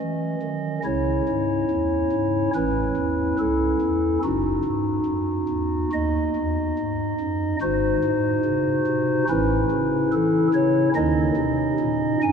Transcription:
0, 0, Header, 1, 2, 480
1, 0, Start_track
1, 0, Tempo, 848656
1, 477, Time_signature, 4, 2, 24, 8
1, 3355, Tempo, 840336
1, 7005, End_track
2, 0, Start_track
2, 0, Title_t, "Pipe organ"
2, 0, Program_c, 0, 19
2, 0, Note_on_c, 0, 52, 65
2, 0, Note_on_c, 0, 61, 41
2, 0, Note_on_c, 0, 75, 109
2, 201, Note_off_c, 0, 52, 0
2, 237, Note_on_c, 0, 51, 56
2, 442, Note_off_c, 0, 51, 0
2, 453, Note_off_c, 0, 61, 0
2, 454, Note_off_c, 0, 75, 0
2, 476, Note_on_c, 0, 64, 37
2, 477, Note_on_c, 0, 37, 53
2, 478, Note_on_c, 0, 49, 59
2, 479, Note_on_c, 0, 73, 73
2, 480, Note_on_c, 0, 61, 40
2, 684, Note_off_c, 0, 37, 0
2, 684, Note_off_c, 0, 49, 0
2, 729, Note_on_c, 0, 44, 62
2, 930, Note_off_c, 0, 44, 0
2, 966, Note_on_c, 0, 40, 62
2, 1168, Note_off_c, 0, 40, 0
2, 1201, Note_on_c, 0, 44, 62
2, 1404, Note_off_c, 0, 44, 0
2, 1417, Note_off_c, 0, 64, 0
2, 1418, Note_off_c, 0, 61, 0
2, 1418, Note_off_c, 0, 73, 0
2, 1442, Note_on_c, 0, 71, 95
2, 1443, Note_on_c, 0, 45, 66
2, 1443, Note_on_c, 0, 64, 47
2, 1444, Note_on_c, 0, 33, 65
2, 1444, Note_on_c, 0, 61, 46
2, 1643, Note_off_c, 0, 45, 0
2, 1644, Note_off_c, 0, 33, 0
2, 1679, Note_on_c, 0, 40, 47
2, 1880, Note_off_c, 0, 40, 0
2, 1901, Note_off_c, 0, 71, 0
2, 1918, Note_on_c, 0, 37, 54
2, 1919, Note_on_c, 0, 69, 84
2, 2120, Note_off_c, 0, 37, 0
2, 2160, Note_on_c, 0, 40, 57
2, 2359, Note_off_c, 0, 40, 0
2, 2370, Note_off_c, 0, 64, 0
2, 2371, Note_off_c, 0, 61, 0
2, 2379, Note_off_c, 0, 69, 0
2, 2398, Note_on_c, 0, 63, 36
2, 2398, Note_on_c, 0, 66, 83
2, 2401, Note_on_c, 0, 30, 56
2, 2401, Note_on_c, 0, 42, 54
2, 2596, Note_off_c, 0, 30, 0
2, 2596, Note_off_c, 0, 42, 0
2, 2629, Note_on_c, 0, 44, 64
2, 2828, Note_off_c, 0, 44, 0
2, 2860, Note_on_c, 0, 42, 58
2, 3069, Note_off_c, 0, 42, 0
2, 3107, Note_on_c, 0, 40, 60
2, 3318, Note_off_c, 0, 40, 0
2, 3336, Note_off_c, 0, 66, 0
2, 3350, Note_on_c, 0, 39, 61
2, 3355, Note_on_c, 0, 75, 101
2, 3559, Note_off_c, 0, 39, 0
2, 3602, Note_on_c, 0, 40, 60
2, 3802, Note_off_c, 0, 40, 0
2, 3846, Note_on_c, 0, 44, 55
2, 4043, Note_off_c, 0, 44, 0
2, 4080, Note_on_c, 0, 42, 66
2, 4279, Note_off_c, 0, 42, 0
2, 4287, Note_off_c, 0, 75, 0
2, 4291, Note_off_c, 0, 63, 0
2, 4314, Note_on_c, 0, 32, 61
2, 4315, Note_on_c, 0, 72, 88
2, 4316, Note_on_c, 0, 63, 47
2, 4317, Note_on_c, 0, 44, 62
2, 4318, Note_on_c, 0, 66, 42
2, 4514, Note_off_c, 0, 32, 0
2, 4516, Note_off_c, 0, 44, 0
2, 4560, Note_on_c, 0, 45, 76
2, 4757, Note_off_c, 0, 45, 0
2, 4795, Note_on_c, 0, 49, 66
2, 4996, Note_off_c, 0, 49, 0
2, 5036, Note_on_c, 0, 48, 67
2, 5238, Note_off_c, 0, 48, 0
2, 5248, Note_off_c, 0, 72, 0
2, 5249, Note_off_c, 0, 63, 0
2, 5249, Note_off_c, 0, 66, 0
2, 5275, Note_on_c, 0, 33, 73
2, 5275, Note_on_c, 0, 61, 51
2, 5276, Note_on_c, 0, 64, 49
2, 5277, Note_on_c, 0, 71, 108
2, 5278, Note_on_c, 0, 45, 75
2, 5477, Note_off_c, 0, 33, 0
2, 5479, Note_off_c, 0, 45, 0
2, 5516, Note_on_c, 0, 49, 56
2, 5717, Note_off_c, 0, 49, 0
2, 5739, Note_off_c, 0, 71, 0
2, 5751, Note_on_c, 0, 69, 91
2, 5755, Note_on_c, 0, 52, 72
2, 5952, Note_off_c, 0, 69, 0
2, 5954, Note_off_c, 0, 52, 0
2, 5989, Note_on_c, 0, 49, 62
2, 5989, Note_on_c, 0, 73, 100
2, 6187, Note_off_c, 0, 49, 0
2, 6187, Note_off_c, 0, 73, 0
2, 6202, Note_off_c, 0, 61, 0
2, 6202, Note_off_c, 0, 64, 0
2, 6224, Note_on_c, 0, 75, 92
2, 6225, Note_on_c, 0, 39, 62
2, 6225, Note_on_c, 0, 61, 46
2, 6226, Note_on_c, 0, 51, 62
2, 6226, Note_on_c, 0, 63, 43
2, 6425, Note_off_c, 0, 39, 0
2, 6425, Note_off_c, 0, 51, 0
2, 6461, Note_on_c, 0, 48, 72
2, 6668, Note_off_c, 0, 48, 0
2, 6709, Note_on_c, 0, 46, 75
2, 6918, Note_off_c, 0, 46, 0
2, 6931, Note_off_c, 0, 75, 0
2, 6952, Note_on_c, 0, 80, 117
2, 6955, Note_on_c, 0, 43, 71
2, 7005, Note_off_c, 0, 43, 0
2, 7005, Note_off_c, 0, 61, 0
2, 7005, Note_off_c, 0, 63, 0
2, 7005, Note_off_c, 0, 80, 0
2, 7005, End_track
0, 0, End_of_file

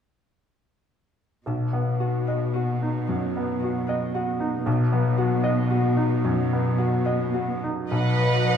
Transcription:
0, 0, Header, 1, 6, 480
1, 0, Start_track
1, 0, Key_signature, 5, "major"
1, 0, Tempo, 809717
1, 870, Time_signature, 4, 2, 24, 8
1, 2300, Tempo, 785340
1, 3740, Tempo, 829876
1, 5091, End_track
2, 0, Start_track
2, 0, Title_t, "Violin section"
2, 0, Program_c, 0, 48
2, 4703, Note_on_c, 0, 71, 38
2, 4704, Note_on_c, 0, 78, 40
2, 5091, Note_off_c, 0, 71, 0
2, 5091, Note_off_c, 0, 78, 0
2, 5091, End_track
3, 0, Start_track
3, 0, Title_t, "Harp"
3, 0, Program_c, 1, 46
3, 872, Note_on_c, 1, 47, 36
3, 1028, Note_on_c, 1, 59, 29
3, 1186, Note_on_c, 1, 66, 28
3, 1346, Note_on_c, 1, 71, 34
3, 1496, Note_off_c, 1, 66, 0
3, 1503, Note_on_c, 1, 66, 31
3, 1821, Note_on_c, 1, 54, 34
3, 2125, Note_off_c, 1, 66, 0
3, 2132, Note_on_c, 1, 66, 32
3, 2285, Note_off_c, 1, 71, 0
3, 2292, Note_on_c, 1, 71, 39
3, 2455, Note_off_c, 1, 66, 0
3, 2462, Note_on_c, 1, 66, 39
3, 2772, Note_off_c, 1, 47, 0
3, 2779, Note_on_c, 1, 47, 51
3, 2931, Note_off_c, 1, 54, 0
3, 2938, Note_on_c, 1, 54, 41
3, 3084, Note_off_c, 1, 66, 0
3, 3092, Note_on_c, 1, 66, 40
3, 3246, Note_off_c, 1, 71, 0
3, 3254, Note_on_c, 1, 71, 43
3, 3373, Note_off_c, 1, 59, 0
3, 3407, Note_off_c, 1, 66, 0
3, 3414, Note_on_c, 1, 66, 40
3, 3735, Note_off_c, 1, 54, 0
3, 3743, Note_on_c, 1, 54, 43
3, 4047, Note_off_c, 1, 66, 0
3, 4054, Note_on_c, 1, 66, 35
3, 4202, Note_off_c, 1, 71, 0
3, 4209, Note_on_c, 1, 71, 38
3, 4370, Note_off_c, 1, 66, 0
3, 4377, Note_on_c, 1, 66, 32
3, 4699, Note_off_c, 1, 47, 0
3, 4706, Note_on_c, 1, 47, 37
3, 4857, Note_off_c, 1, 54, 0
3, 4864, Note_on_c, 1, 54, 29
3, 5091, Note_off_c, 1, 47, 0
3, 5091, Note_off_c, 1, 54, 0
3, 5091, Note_off_c, 1, 66, 0
3, 5091, Note_off_c, 1, 71, 0
3, 5091, End_track
4, 0, Start_track
4, 0, Title_t, "Viola section"
4, 0, Program_c, 2, 48
4, 4700, Note_on_c, 2, 75, 37
4, 4701, Note_on_c, 2, 54, 37
4, 5091, Note_off_c, 2, 54, 0
4, 5091, Note_off_c, 2, 75, 0
4, 5091, End_track
5, 0, Start_track
5, 0, Title_t, "Grand piano"
5, 0, Program_c, 3, 0
5, 866, Note_on_c, 3, 35, 36
5, 979, Control_c, 3, 64, 127
5, 1026, Note_on_c, 3, 59, 30
5, 1184, Note_on_c, 3, 66, 27
5, 1284, Note_off_c, 3, 59, 0
5, 1353, Note_on_c, 3, 75, 29
5, 1441, Note_off_c, 3, 66, 0
5, 1515, Note_on_c, 3, 66, 29
5, 1605, Note_off_c, 3, 75, 0
5, 1674, Note_on_c, 3, 63, 30
5, 1766, Note_off_c, 3, 66, 0
5, 1801, Note_off_c, 3, 35, 0
5, 1832, Note_on_c, 3, 42, 33
5, 1926, Note_off_c, 3, 63, 0
5, 1997, Note_on_c, 3, 59, 29
5, 2084, Note_off_c, 3, 42, 0
5, 2158, Note_on_c, 3, 66, 35
5, 2244, Note_off_c, 3, 59, 0
5, 2306, Note_on_c, 3, 75, 37
5, 2405, Note_off_c, 3, 66, 0
5, 2463, Note_on_c, 3, 66, 38
5, 2560, Note_off_c, 3, 75, 0
5, 2619, Note_on_c, 3, 63, 39
5, 2717, Note_off_c, 3, 66, 0
5, 2777, Note_on_c, 3, 35, 45
5, 2791, Control_c, 3, 64, 0
5, 2874, Note_off_c, 3, 63, 0
5, 2874, Control_c, 3, 64, 127
5, 2938, Note_on_c, 3, 59, 40
5, 3095, Note_on_c, 3, 66, 41
5, 3192, Note_off_c, 3, 59, 0
5, 3251, Note_on_c, 3, 75, 46
5, 3352, Note_off_c, 3, 66, 0
5, 3415, Note_on_c, 3, 66, 41
5, 3511, Note_off_c, 3, 75, 0
5, 3577, Note_on_c, 3, 63, 40
5, 3676, Note_off_c, 3, 66, 0
5, 3716, Note_off_c, 3, 35, 0
5, 3745, Note_on_c, 3, 42, 42
5, 3834, Note_off_c, 3, 63, 0
5, 3907, Note_on_c, 3, 59, 33
5, 3993, Note_off_c, 3, 42, 0
5, 4058, Note_on_c, 3, 66, 35
5, 4154, Note_off_c, 3, 59, 0
5, 4216, Note_on_c, 3, 75, 37
5, 4312, Note_off_c, 3, 66, 0
5, 4380, Note_on_c, 3, 66, 33
5, 4477, Note_off_c, 3, 75, 0
5, 4550, Note_on_c, 3, 63, 30
5, 4643, Note_off_c, 3, 66, 0
5, 4709, Note_off_c, 3, 63, 0
5, 4710, Note_on_c, 3, 35, 38
5, 4716, Control_c, 3, 64, 0
5, 4830, Control_c, 3, 64, 127
5, 5091, Note_off_c, 3, 35, 0
5, 5091, End_track
6, 0, Start_track
6, 0, Title_t, "Cello section"
6, 0, Program_c, 4, 48
6, 868, Note_on_c, 4, 47, 40
6, 2754, Note_off_c, 4, 47, 0
6, 2772, Note_on_c, 4, 47, 54
6, 4558, Note_off_c, 4, 47, 0
6, 4703, Note_on_c, 4, 71, 44
6, 5091, Note_off_c, 4, 71, 0
6, 5091, End_track
0, 0, End_of_file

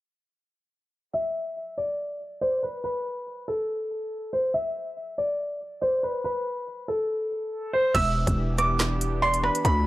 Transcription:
0, 0, Header, 1, 6, 480
1, 0, Start_track
1, 0, Key_signature, 1, "minor"
1, 0, Tempo, 425532
1, 1284, Time_signature, 4, 2, 24, 8
1, 11130, End_track
2, 0, Start_track
2, 0, Title_t, "Synth pluck"
2, 0, Program_c, 0, 84
2, 1279, Note_on_c, 0, 76, 90
2, 1733, Note_off_c, 0, 76, 0
2, 2725, Note_on_c, 0, 74, 83
2, 2952, Note_off_c, 0, 74, 0
2, 2964, Note_on_c, 0, 71, 82
2, 3192, Note_off_c, 0, 71, 0
2, 5123, Note_on_c, 0, 76, 97
2, 5574, Note_off_c, 0, 76, 0
2, 6559, Note_on_c, 0, 74, 92
2, 6789, Note_off_c, 0, 74, 0
2, 6804, Note_on_c, 0, 72, 88
2, 7032, Note_off_c, 0, 72, 0
2, 8959, Note_on_c, 0, 76, 95
2, 9413, Note_off_c, 0, 76, 0
2, 10405, Note_on_c, 0, 74, 85
2, 10632, Note_off_c, 0, 74, 0
2, 10645, Note_on_c, 0, 71, 85
2, 10872, Note_off_c, 0, 71, 0
2, 11130, End_track
3, 0, Start_track
3, 0, Title_t, "Grand piano"
3, 0, Program_c, 1, 0
3, 1285, Note_on_c, 1, 76, 104
3, 1961, Note_off_c, 1, 76, 0
3, 2003, Note_on_c, 1, 74, 77
3, 2680, Note_off_c, 1, 74, 0
3, 2723, Note_on_c, 1, 72, 92
3, 2931, Note_off_c, 1, 72, 0
3, 2963, Note_on_c, 1, 71, 77
3, 3171, Note_off_c, 1, 71, 0
3, 3202, Note_on_c, 1, 71, 101
3, 3880, Note_off_c, 1, 71, 0
3, 3925, Note_on_c, 1, 69, 76
3, 4839, Note_off_c, 1, 69, 0
3, 4884, Note_on_c, 1, 72, 75
3, 5092, Note_off_c, 1, 72, 0
3, 5122, Note_on_c, 1, 76, 104
3, 5800, Note_off_c, 1, 76, 0
3, 5844, Note_on_c, 1, 74, 76
3, 6520, Note_off_c, 1, 74, 0
3, 6564, Note_on_c, 1, 72, 96
3, 6771, Note_off_c, 1, 72, 0
3, 6804, Note_on_c, 1, 71, 85
3, 7012, Note_off_c, 1, 71, 0
3, 7043, Note_on_c, 1, 71, 112
3, 7720, Note_off_c, 1, 71, 0
3, 7764, Note_on_c, 1, 69, 80
3, 8678, Note_off_c, 1, 69, 0
3, 8724, Note_on_c, 1, 72, 79
3, 8932, Note_off_c, 1, 72, 0
3, 8964, Note_on_c, 1, 88, 109
3, 9641, Note_off_c, 1, 88, 0
3, 9683, Note_on_c, 1, 86, 86
3, 10360, Note_off_c, 1, 86, 0
3, 10403, Note_on_c, 1, 84, 102
3, 10611, Note_off_c, 1, 84, 0
3, 10643, Note_on_c, 1, 83, 83
3, 10851, Note_off_c, 1, 83, 0
3, 10882, Note_on_c, 1, 83, 111
3, 11130, Note_off_c, 1, 83, 0
3, 11130, End_track
4, 0, Start_track
4, 0, Title_t, "Analog synth pad"
4, 0, Program_c, 2, 89
4, 8962, Note_on_c, 2, 62, 78
4, 8962, Note_on_c, 2, 67, 90
4, 8963, Note_on_c, 2, 52, 85
4, 8963, Note_on_c, 2, 59, 76
4, 10864, Note_off_c, 2, 52, 0
4, 10864, Note_off_c, 2, 59, 0
4, 10864, Note_off_c, 2, 67, 0
4, 10883, Note_on_c, 2, 50, 88
4, 10883, Note_on_c, 2, 65, 76
4, 10883, Note_on_c, 2, 69, 96
4, 11130, Note_off_c, 2, 50, 0
4, 11130, Note_off_c, 2, 62, 0
4, 11130, Note_off_c, 2, 65, 0
4, 11130, Note_off_c, 2, 69, 0
4, 11130, End_track
5, 0, Start_track
5, 0, Title_t, "808-style bass"
5, 0, Program_c, 3, 38
5, 8963, Note_on_c, 3, 28, 109
5, 9316, Note_off_c, 3, 28, 0
5, 9330, Note_on_c, 3, 28, 105
5, 10725, Note_off_c, 3, 28, 0
5, 10883, Note_on_c, 3, 38, 110
5, 11130, Note_off_c, 3, 38, 0
5, 11130, End_track
6, 0, Start_track
6, 0, Title_t, "Drums"
6, 8963, Note_on_c, 9, 36, 114
6, 8963, Note_on_c, 9, 49, 100
6, 8964, Note_on_c, 9, 42, 89
6, 9076, Note_off_c, 9, 36, 0
6, 9076, Note_off_c, 9, 42, 0
6, 9076, Note_off_c, 9, 49, 0
6, 9330, Note_on_c, 9, 36, 97
6, 9332, Note_on_c, 9, 42, 83
6, 9443, Note_off_c, 9, 36, 0
6, 9445, Note_off_c, 9, 42, 0
6, 9683, Note_on_c, 9, 42, 83
6, 9684, Note_on_c, 9, 37, 97
6, 9795, Note_off_c, 9, 42, 0
6, 9797, Note_off_c, 9, 37, 0
6, 9923, Note_on_c, 9, 42, 89
6, 9924, Note_on_c, 9, 38, 116
6, 9929, Note_on_c, 9, 39, 92
6, 10036, Note_off_c, 9, 38, 0
6, 10036, Note_off_c, 9, 42, 0
6, 10042, Note_off_c, 9, 39, 0
6, 10165, Note_on_c, 9, 42, 90
6, 10278, Note_off_c, 9, 42, 0
6, 10532, Note_on_c, 9, 42, 67
6, 10643, Note_on_c, 9, 37, 97
6, 10645, Note_off_c, 9, 42, 0
6, 10756, Note_off_c, 9, 37, 0
6, 10772, Note_on_c, 9, 42, 84
6, 10883, Note_on_c, 9, 36, 113
6, 10884, Note_off_c, 9, 42, 0
6, 10884, Note_on_c, 9, 42, 88
6, 10996, Note_off_c, 9, 36, 0
6, 10996, Note_off_c, 9, 42, 0
6, 11130, End_track
0, 0, End_of_file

